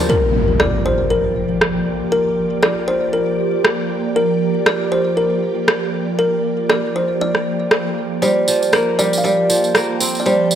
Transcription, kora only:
0.00 0.14 F3 loud
0.00 0.14 G3 medium
0.00 1.25 A#3 loud
0.00 0.62 C4 loud
0.00 0.89 D4 medium
8.22 8.98 G3 medium
8.48 9.48 F3 medium
8.73 9.75 A#3 medium
8.99 9.23 G3 loud
9.24 10.24 G3 medium
9.49 10.55 F3 medium
9.75 10.55 A#3 medium
10.00 10.55 C4 medium
10.26 10.55 G3 medium

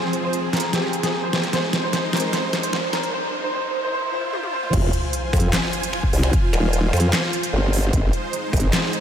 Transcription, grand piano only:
0.00 0.17 C5 medium
0.23 0.47 C5 medium
0.53 0.69 A#4 medium
0.73 0.97 G4 medium
1.03 1.19 G#4 medium
1.23 1.47 C5 medium
1.53 1.77 C5 medium
1.83 2.07 C5 medium
2.13 2.29 A#4 medium
2.33 2.57 C5 medium
2.63 2.87 C5 medium
2.93 3.09 A#4 medium
3.13 3.37 C5 loud
3.43 3.52 C5 medium
3.53 3.77 C5 loud
3.83 3.92 C5 medium
3.93 4.12 C5 loud
4.13 4.32 C5 loud
4.33 4.52 C5 loud
4.53 4.72 C5 loud

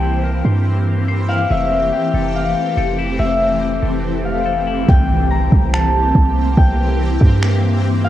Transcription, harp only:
0.00 1.36 G5 medium
0.00 0.42 A5 medium
1.28 1.57 F5 medium
1.51 2.41 E5 loud
1.92 3.47 G5 medium
2.35 3.25 F5 medium
3.19 4.31 E5 loud
4.25 5.91 F5 medium
4.89 6.44 G5 loud
5.30 5.79 A#5 medium
5.73 7.18 A5 medium
6.57 8.09 G5 loud
8.04 8.09 F5 medium

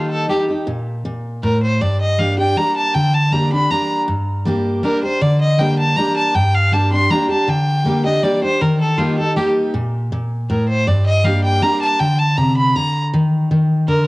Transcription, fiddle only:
0.10 0.28 A4 medium
0.29 0.41 G4 medium
1.43 1.61 A#4 medium
1.63 1.83 C5 medium
1.81 2.00 D5 medium
2.01 2.21 D#5 medium
2.19 2.38 F5 medium
2.39 2.59 G5 medium
2.57 2.76 A#5 medium
2.76 2.96 A5 loud
2.94 3.16 G5 medium
3.14 3.34 A5 loud
3.32 3.52 A#5 medium
3.52 3.72 B5 loud
3.71 3.99 A#5 medium
4.84 5.02 A#4 medium
5.03 5.23 C5 medium
5.21 5.40 D5 medium
5.41 5.60 D#5 medium
5.59 5.78 G5 medium
5.79 5.98 A5 medium
5.97 6.16 A#5 loud
6.16 6.36 A5 loud
6.35 6.56 G5 medium
6.55 6.75 F5 loud
6.73 6.92 A5 medium
6.92 7.12 C6 loud
7.11 7.30 A#5 medium
7.31 7.51 A5 medium
7.49 8.05 G5 medium
8.06 8.25 D#5 medium
8.24 8.43 D5 medium
8.44 8.63 C5 medium
8.62 8.80 A#4 medium
8.81 9.00 A4 medium
8.98 9.18 F4 medium
9.18 9.35 A4 medium
9.36 9.48 G4 medium
10.50 10.68 A#4 medium
10.69 10.88 C5 loud
10.87 11.06 D5 medium
11.06 11.26 D#5 medium
11.24 11.43 F5 medium
11.44 11.64 G5 medium
11.62 11.81 A#5 loud
11.82 12.01 A5 loud
12.00 12.20 G5 medium
12.19 12.39 A5 loud
12.37 12.56 A#5 medium
12.57 12.77 B5 loud
12.76 13.04 A#5 loud
13.88 14.06 A#4 medium

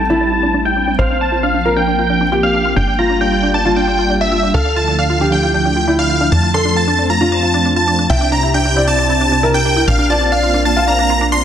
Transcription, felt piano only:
0.10 0.90 E4 medium
0.99 1.56 C5 medium
1.65 2.23 A#4 medium
2.32 2.90 G4 medium
2.99 3.57 F4 medium
3.65 4.45 F4 medium
4.54 5.12 A4 medium
5.21 5.79 G4 medium
5.88 6.45 E4 medium
6.54 7.12 A4 medium
7.21 8.01 F4 medium
8.10 8.68 E5 medium
8.76 9.34 D5 medium
9.43 10.01 A#4 medium
10.10 10.68 D5 medium
10.76 11.44 F5 medium

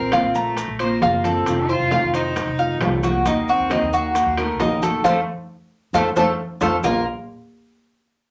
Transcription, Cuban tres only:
0.00 0.12 A#4 medium
0.13 0.34 F4 medium
0.35 0.79 A#5 medium
0.80 1.01 C5 medium
1.02 1.24 F4 medium
1.25 1.68 A4 medium
1.69 1.91 C5 medium
1.92 2.13 F5 medium
2.14 2.58 C5 medium
2.59 3.02 F5 medium
3.04 3.26 F#4 medium
3.26 3.48 D#4 medium
3.49 3.70 F#4 medium
3.71 3.93 D#4 medium
3.93 4.37 F#4 medium
4.38 4.60 A#4 medium
4.60 4.82 D#4 medium
4.83 5.03 A4 medium
5.04 5.19 F4 loud
5.04 5.19 A4 medium
5.04 5.19 C5 medium
5.94 6.09 F4 loud
5.94 6.09 A4 loud
5.94 6.09 C5 medium
6.17 6.31 F4 medium
6.17 6.31 A4 medium
6.17 6.31 C5 loud
6.61 6.76 F4 medium
6.61 6.76 A4 medium
6.61 6.76 C5 medium
6.84 7.05 A#3 medium
6.84 7.05 F4 medium
6.84 7.05 A#4 loud

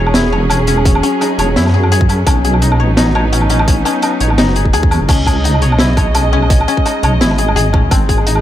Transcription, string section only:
0.00 5.05 F#3 medium
0.00 2.24 C#4 medium
0.00 2.24 G#4 medium
2.27 5.06 B3 medium
2.27 5.06 D#4 medium
5.09 7.88 C#3 medium
5.09 8.41 G#3 medium
5.09 7.88 D#5 medium
7.91 8.41 D#4 medium
7.91 8.41 G#4 medium

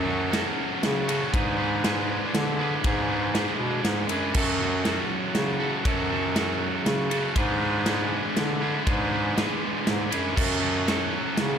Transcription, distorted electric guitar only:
0.00 0.30 F#3 medium
0.06 0.30 C#4 medium
0.06 0.31 F#4 medium
0.06 0.32 A4 medium
0.31 1.31 F#3 medium
0.31 1.09 C#4 loud
0.31 1.08 F#4 loud
0.31 1.07 A4 loud
1.08 1.33 C#4 medium
1.08 1.32 F#4 medium
1.08 1.32 A4 medium
1.33 1.83 G#3 loud
1.33 1.60 D4 medium
1.33 1.59 G#4 medium
1.33 1.58 B4 loud
1.58 1.84 D4 medium
1.58 1.84 G#4 medium
1.58 1.85 B4 medium
1.84 2.83 G#3 loud
1.84 2.60 D4 loud
1.84 2.58 G#4 loud
1.84 2.57 B4 loud
2.58 2.84 D4 medium
2.58 2.85 G#4 medium
2.58 2.85 B4 medium
2.84 3.33 G#3 medium
2.84 3.10 D4 loud
2.84 3.09 G#4 medium
2.84 3.08 B4 loud
3.09 3.34 D4 medium
3.09 3.35 G#4 medium
3.09 3.35 B4 medium
3.34 4.33 G#3 loud
3.34 4.11 D4 medium
3.34 4.10 G#4 loud
3.34 4.09 B4 medium
4.10 4.34 D4 medium
4.10 4.34 G#4 medium
4.10 4.34 B4 medium
4.35 4.84 F#3 medium
4.35 4.61 C#4 medium
4.35 4.61 F#4 loud
4.35 4.60 A4 loud
4.60 4.85 C#4 medium
4.60 4.86 F#4 medium
4.60 4.86 A4 medium
4.85 5.84 F#3 loud
4.85 5.60 C#4 loud
4.85 5.59 F#4 loud
4.85 5.58 A4 loud
5.60 5.85 C#4 medium
5.60 5.85 F#4 medium
5.60 5.86 A4 medium
5.85 6.34 F#3 loud
5.85 6.11 C#4 loud
5.85 6.10 F#4 loud
5.85 6.09 A4 loud
6.10 6.34 C#4 medium
6.10 6.35 F#4 medium
6.10 6.35 A4 medium
6.35 7.34 F#3 loud
6.35 7.10 C#4 loud
6.35 7.09 F#4 loud
6.35 7.08 A4 loud
7.10 7.35 C#4 medium
7.10 7.34 F#4 medium
7.10 7.34 A4 medium
7.35 7.85 G#3 medium
7.35 7.62 D4 loud
7.35 7.61 G#4 loud
7.35 7.60 B4 loud
7.60 7.85 D4 medium
7.60 7.86 G#4 medium
7.60 7.87 B4 medium
7.85 8.85 G#3 loud
7.85 8.62 D4 loud
7.85 8.60 G#4 loud
7.85 8.60 B4 loud
8.61 8.85 D4 medium
8.61 8.86 G#4 medium
8.61 8.87 B4 medium
8.86 9.34 G#3 loud
8.86 9.12 D4 medium
8.86 9.11 G#4 loud
8.86 9.10 B4 loud
9.11 9.35 D4 medium
9.11 9.36 G#4 medium
9.11 9.37 B4 medium
9.36 10.35 G#3 medium
9.36 10.11 D4 loud
9.36 10.10 G#4 medium
9.36 10.09 B4 loud
10.11 10.36 D4 medium
10.11 10.35 G#4 medium
10.11 10.35 B4 medium
10.36 10.86 F#3 medium
10.36 10.63 C#4 loud
10.36 10.62 F#4 loud
10.36 10.61 A4 loud
10.61 10.87 C#4 medium
10.61 10.87 F#4 medium
10.61 10.88 A4 medium
10.86 11.58 F#3 loud
10.86 11.58 C#4 loud
10.86 11.58 F#4 loud
10.86 11.58 A4 loud

